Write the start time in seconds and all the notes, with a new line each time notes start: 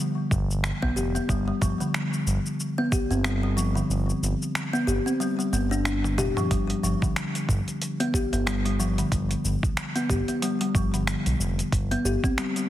0.31 G1, kick, cabasa
0.51 cabasa
0.64 finger snap, cabasa
0.82 B1 B3, kick
0.96 F1 G4, cabasa
1.15 B3, cabasa
1.29 G1 G3, kick, cabasa
1.48 G3
1.61 G1 F3, kick, cabasa
1.80 D3, cabasa
1.94 finger snap, cabasa
2.14 cabasa
2.27 G1, cabasa
2.46 cabasa
2.60 cabasa
2.78 B3
2.92 G4, kick, cabasa
3.10 G1 C4, cabasa
3.24 G3, finger snap, cabasa
3.43 G3
3.57 F3, cabasa
3.75 D3, cabasa
3.90 G1, cabasa
4.10 cabasa
4.22 G1, cabasa
4.42 cabasa
4.55 finger snap, cabasa
4.73 B3, cabasa
4.87 G1 G4, cabasa
5.06 C4, cabasa
5.20 G3, cabasa
5.39 G3, cabasa
5.53 G1 B3, cabasa
5.71 D4, cabasa
5.85 D4, finger snap, cabasa
6.04 high tom, cabasa
6.18 F1 G4, mid tom, cabasa
6.37 F3, mid tom, cabasa
6.51 G1 G3, kick, closed hi-hat, cabasa
6.70 G3, closed hi-hat
6.83 G1 F3, cabasa
7.02 D3, kick, cabasa
7.16 finger snap, closed hi-hat, cabasa
7.35 closed hi-hat, cabasa
7.49 G1, kick, cabasa
7.68 closed hi-hat, cabasa
7.82 closed hi-hat, cabasa
8.00 B3, closed hi-hat
8.14 G4, kick, cabasa
8.32 G1 B3, closed hi-hat, cabasa
8.47 G3, finger snap, closed hi-hat, cabasa
8.65 G3, closed hi-hat
8.80 F3, cabasa
8.98 D3, closed hi-hat, cabasa
9.12 G1, kick, closed hi-hat, cabasa
9.31 closed hi-hat, cabasa
9.44 G1, cabasa
9.63 kick, cabasa
9.77 finger snap, closed hi-hat, cabasa
9.96 B3, closed hi-hat, cabasa
10.09 G1 G4, kick, cabasa
10.28 B3, closed hi-hat, cabasa
10.42 G3, closed hi-hat, cabasa
10.61 G3, closed hi-hat
10.75 G1 F3, kick, cabasa
10.94 D3, closed hi-hat, cabasa
11.07 finger snap, closed hi-hat, cabasa
11.26 B1, closed hi-hat, cabasa
11.40 F1, cabasa
11.59 closed hi-hat, cabasa
11.72 G1, kick, closed hi-hat, cabasa
11.91 B3, closed hi-hat
12.05 G1 G4, cabasa
12.24 C4, kick, cabasa
12.38 G3, finger snap, closed hi-hat, cabasa
12.56 G3, closed hi-hat, cabasa